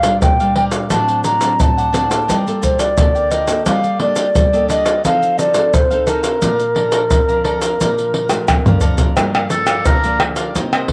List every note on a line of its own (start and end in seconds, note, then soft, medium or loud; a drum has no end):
0.00 0.20 A#2 medium
0.00 0.38 G4 soft
0.00 0.38 A#4 soft
0.00 0.38 D5 soft
0.00 0.20 F5 medium
0.00 0.39 F5 soft
0.00 pandeiro medium
0.00 maracas medium
0.05 0.34 G3 medium
0.05 0.34 D4 medium
0.05 0.34 F4 medium
0.22 0.88 A#2 medium
0.22 0.54 G5 medium
0.22 pandeiro medium
0.22 maracas medium
0.22 surdo medium
0.40 0.86 G3 medium
0.40 0.87 D4 medium
0.40 0.87 F4 medium
0.40 0.55 A#4 soft
0.40 0.56 D5 soft
0.40 0.56 F5 soft
0.40 pandeiro soft
0.40 maracas soft
0.56 0.72 G4 medium
0.56 0.72 A#4 medium
0.56 0.72 D5 medium
0.56 0.71 F5 medium
0.56 0.65 G5 medium
0.56 pandeiro medium
0.72 0.90 A#4 soft
0.72 0.90 D5 soft
0.72 0.89 F5 soft
0.72 pandeiro medium
0.72 maracas medium
0.90 1.57 A2 medium
0.90 1.38 F#3 soft
0.90 1.38 C4 soft
0.90 1.23 D4 medium
0.90 1.38 D4 medium
0.90 1.24 C5 medium
0.90 1.25 D5 medium
0.90 1.25 F#5 medium
0.90 1.23 A5 loud
0.90 pandeiro medium
0.90 maracas medium
0.90 surdo medium
1.09 pandeiro soft
1.09 maracas soft
1.24 1.40 D4 soft
1.24 1.40 C5 soft
1.24 1.41 D5 medium
1.24 1.41 F#5 medium
1.24 1.62 A#5 medium
1.24 pandeiro medium
1.24 maracas medium
1.41 1.89 F#3 medium
1.41 1.89 C4 medium
1.41 1.51 D4 medium
1.41 1.89 D4 medium
1.41 1.51 C5 medium
1.41 1.51 D5 medium
1.41 1.52 F#5 medium
1.41 pandeiro medium
1.41 maracas medium
1.60 2.25 A2 medium
1.60 2.37 A5 loud
1.60 pandeiro medium
1.60 maracas medium
1.60 surdo medium
1.77 1.92 C5 soft
1.77 1.93 D5 soft
1.77 1.93 F#5 soft
1.77 pandeiro soft
1.77 maracas soft
1.93 2.04 F#3 medium
1.93 2.04 C4 medium
1.93 2.09 D4 medium
1.93 2.05 D4 medium
1.93 2.10 C5 medium
1.93 2.10 D5 medium
1.93 2.08 F#5 medium
1.93 pandeiro medium
1.93 maracas medium
2.09 2.40 A#3 medium
2.09 2.40 F4 medium
2.09 2.40 A4 medium
2.09 2.27 C5 soft
2.09 2.27 D5 soft
2.09 2.27 F#5 soft
2.09 pandeiro medium
2.09 maracas medium
2.28 2.94 G3 medium
2.28 2.60 F4 medium
2.28 2.61 A#4 medium
2.28 2.62 D5 medium
2.28 2.62 G5 medium
2.28 pandeiro medium
2.28 maracas medium
2.28 surdo soft
2.46 2.92 A#3 medium
2.46 2.93 F4 medium
2.46 2.93 A4 medium
2.46 pandeiro soft
2.46 maracas soft
2.61 3.13 F4 soft
2.61 3.13 A#4 soft
2.61 2.81 C5 medium
2.61 3.13 D5 medium
2.61 3.14 G5 soft
2.61 pandeiro medium
2.61 maracas medium
2.61 surdo medium
2.79 3.33 D5 medium
2.79 pandeiro medium
2.79 maracas medium
2.97 3.63 D3 medium
2.97 3.44 A#3 soft
2.97 3.44 F4 medium
2.97 3.44 A4 medium
2.97 pandeiro medium
2.97 maracas medium
2.97 surdo medium
3.15 3.30 A#4 soft
3.15 3.31 D5 soft
3.15 3.31 G5 soft
3.15 pandeiro soft
3.15 maracas soft
3.30 3.47 F4 medium
3.30 3.48 A#4 medium
3.30 3.47 D5 medium
3.30 3.66 D#5 medium
3.30 3.46 G5 medium
3.30 pandeiro medium
3.30 maracas medium
3.47 3.98 A#3 medium
3.47 3.99 A4 medium
3.47 3.65 A#4 soft
3.47 3.65 D5 soft
3.47 3.64 G5 soft
3.47 pandeiro medium
3.47 maracas medium
3.65 4.32 G3 medium
3.65 4.00 G4 medium
3.65 4.01 D5 medium
3.65 4.00 D#5 medium
3.65 3.99 F5 medium
3.65 pandeiro medium
3.65 maracas medium
3.65 surdo medium
3.84 pandeiro soft
3.84 maracas soft
4.00 4.33 A#3 medium
4.00 4.33 D4 soft
4.00 4.15 D4 soft
4.00 4.16 G4 soft
4.00 4.33 A4 medium
4.00 4.66 D5 medium
4.00 4.16 D5 medium
4.00 4.16 D#5 medium
4.00 pandeiro medium
4.16 4.26 D4 medium
4.16 4.27 G4 medium
4.16 4.27 D5 medium
4.16 4.27 D#5 medium
4.16 pandeiro medium
4.16 maracas medium
4.35 5.01 G3 medium
4.35 pandeiro medium
4.35 maracas medium
4.35 surdo medium
4.53 4.99 A#3 medium
4.53 4.99 D4 medium
4.53 4.68 G4 soft
4.53 4.99 A4 medium
4.53 4.69 D5 soft
4.53 4.69 D#5 soft
4.53 pandeiro soft
4.53 maracas soft
4.68 4.85 D4 medium
4.68 4.86 G4 medium
4.68 4.84 D5 medium
4.68 5.02 D#5 medium
4.68 4.84 D#5 medium
4.68 pandeiro medium
4.68 maracas medium
4.85 5.03 G4 soft
4.85 5.02 D5 soft
4.85 5.02 D#5 soft
4.85 pandeiro medium
4.85 maracas medium
5.04 5.70 F3 medium
5.04 5.51 C4 medium
5.04 5.36 D#4 medium
5.04 5.51 D#4 medium
5.04 5.37 A4 medium
5.04 5.51 A4 medium
5.04 5.38 C5 medium
5.04 5.37 F5 medium
5.04 5.39 F5 medium
5.04 pandeiro medium
5.04 maracas medium
5.04 surdo medium
5.22 pandeiro soft
5.22 maracas soft
5.38 5.89 D#4 soft
5.38 5.89 A4 soft
5.38 5.89 C5 soft
5.38 5.75 D5 medium
5.38 5.89 F5 soft
5.38 pandeiro medium
5.38 maracas medium
5.54 5.84 C4 medium
5.54 5.85 D#4 medium
5.54 5.85 A4 medium
5.54 pandeiro medium
5.54 maracas medium
5.74 6.39 C3 medium
5.74 6.10 C5 medium
5.74 pandeiro medium
5.74 maracas medium
5.74 surdo medium
5.91 6.37 C4 medium
5.91 6.37 D#4 medium
5.91 6.38 A4 medium
5.91 6.06 A4 soft
5.91 6.07 C5 soft
5.91 6.06 F5 medium
5.91 pandeiro soft
5.91 maracas soft
6.07 6.23 D#4 medium
6.07 6.23 A4 medium
6.07 8.84 A#4 medium
6.07 6.23 C5 medium
6.07 6.22 F5 medium
6.07 pandeiro medium
6.07 maracas medium
6.23 6.41 A4 soft
6.23 6.40 C5 soft
6.23 6.40 F5 soft
6.23 pandeiro medium
6.23 maracas medium
6.42 7.08 A#2 medium
6.42 6.63 F3 soft
6.42 6.63 A3 medium
6.42 6.63 D4 medium
6.42 6.75 D5 medium
6.42 6.75 F5 medium
6.42 6.76 A#5 medium
6.42 pandeiro medium
6.42 maracas medium
6.42 surdo medium
6.60 pandeiro soft
6.60 maracas soft
6.75 7.23 F3 soft
6.75 7.23 D4 medium
6.75 6.91 A4 soft
6.75 6.91 D5 soft
6.75 6.91 F5 medium
6.75 6.92 A#5 medium
6.75 pandeiro medium
6.92 7.02 A4 medium
6.92 7.02 D5 medium
6.92 7.02 F5 medium
6.92 7.03 A#5 medium
6.92 pandeiro medium
6.92 maracas medium
7.11 7.77 F2 medium
7.11 pandeiro medium
7.11 maracas medium
7.11 surdo medium
7.29 7.76 F3 medium
7.29 7.76 D4 medium
7.29 7.43 D5 soft
7.29 7.45 F5 soft
7.29 7.44 A#5 soft
7.29 pandeiro soft
7.29 maracas soft
7.44 7.61 A4 medium
7.44 7.61 D5 medium
7.44 7.61 F5 medium
7.44 7.60 A#5 medium
7.44 pandeiro medium
7.61 7.79 D5 soft
7.61 7.78 F5 soft
7.61 7.78 A#5 soft
7.61 pandeiro medium
7.61 maracas medium
7.80 8.46 A#2 medium
7.80 8.27 F3 soft
7.80 8.27 D4 medium
7.80 8.13 D5 medium
7.80 8.13 F5 medium
7.80 8.14 A#5 medium
7.80 pandeiro medium
7.80 maracas medium
7.80 surdo medium
7.98 pandeiro soft
7.98 maracas soft
8.14 8.65 D5 soft
8.14 8.65 F5 soft
8.14 8.65 A#5 soft
8.14 pandeiro medium
8.29 8.60 F3 medium
8.29 8.60 A3 medium
8.29 8.61 D4 medium
8.29 pandeiro medium
8.29 tamborim medium
8.29 maracas medium
8.48 9.15 F2 medium
8.48 pandeiro medium
8.48 tamborim medium
8.48 maracas medium
8.48 surdo medium
8.66 9.13 F3 medium
8.66 9.13 A3 medium
8.66 9.13 D4 medium
8.66 8.81 D5 soft
8.66 8.81 F5 soft
8.66 8.82 A#5 soft
8.66 surdo medium
8.66 pandeiro soft
8.66 maracas soft
8.81 8.98 A4 medium
8.81 8.98 D5 medium
8.81 8.98 F5 medium
8.81 8.97 A#5 medium
8.81 pandeiro medium
8.81 maracas medium
8.81 surdo medium
8.98 9.16 D5 soft
8.98 9.16 F5 soft
8.98 9.15 A#5 soft
8.98 pandeiro medium
8.98 maracas medium
8.98 surdo medium
9.17 9.83 G2 medium
9.17 9.47 F3 soft
9.17 9.47 A#3 medium
9.17 9.47 D4 medium
9.17 9.33 G4 soft
9.17 9.34 A#4 soft
9.17 9.34 D5 soft
9.17 9.33 F5 medium
9.17 pandeiro medium
9.17 tamborim medium
9.17 maracas medium
9.17 surdo medium
9.35 9.50 A#4 medium
9.35 9.50 D5 medium
9.35 9.51 F5 medium
9.35 pandeiro soft
9.35 tamborim medium
9.35 maracas soft
9.50 9.98 F3 medium
9.50 9.98 A#3 medium
9.50 9.99 D4 medium
9.50 9.88 A4 medium
9.50 muted cavaquinho stroke soft
9.50 pandeiro medium
9.50 maracas medium
9.67 9.85 A#4 medium
9.67 9.85 D5 medium
9.67 9.84 F5 medium
9.67 pandeiro medium
9.67 tamborim medium
9.67 maracas medium
9.86 10.52 D3 medium
9.86 10.02 G4 medium
9.86 10.02 A#4 medium
9.86 10.21 A#4 medium
9.86 10.03 D5 medium
9.86 10.03 F5 medium
9.86 pandeiro medium
9.86 maracas medium
9.86 surdo medium
10.04 10.50 F3 medium
10.04 10.51 A#3 medium
10.04 10.51 D4 medium
10.04 10.37 A#4 medium
10.04 10.36 D5 medium
10.04 10.36 F5 medium
10.04 pandeiro soft
10.04 maracas soft
10.20 pandeiro medium
10.20 tamborim medium
10.36 10.54 A#4 medium
10.36 10.54 D5 medium
10.36 10.54 F5 medium
10.36 pandeiro medium
10.36 maracas medium
10.55 10.93 C3 medium
10.55 10.88 A#3 soft
10.55 10.88 D#4 soft
10.55 10.72 D#4 soft
10.55 10.88 G4 medium
10.55 10.72 A#4 soft
10.55 10.72 C5 soft
10.55 10.73 D#5 medium
10.55 pandeiro medium
10.55 maracas medium
10.55 surdo medium
10.73 10.89 A#4 medium
10.73 10.89 C5 medium
10.73 10.89 D#5 medium
10.73 pandeiro soft
10.73 tamborim medium
10.73 maracas soft
10.88 pandeiro medium
10.88 surdo medium